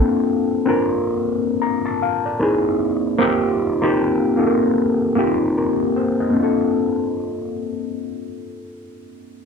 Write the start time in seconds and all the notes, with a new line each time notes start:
Already playing: A#3 C4 D4 F4 A4 G5
0.66 A#3 C4 D4 F4 A#4
1.62 A#5
1.86 A5
2.02 F5
2.26 D5
2.39 A#3 C4 D#4 E4 G#4
3.18 A#3 C4 D#4 F4 G4
3.82 A#3 C4 D#4 F4 G4
4.37 A#3 C4 D#4 F4 A4
4.46 A#4
5.16 A#3 C4 D#4 F4 G4
5.58 A#4
5.96 C5
6.20 D#5
6.30 A#3 C4
6.37 D4 F4
6.43 A4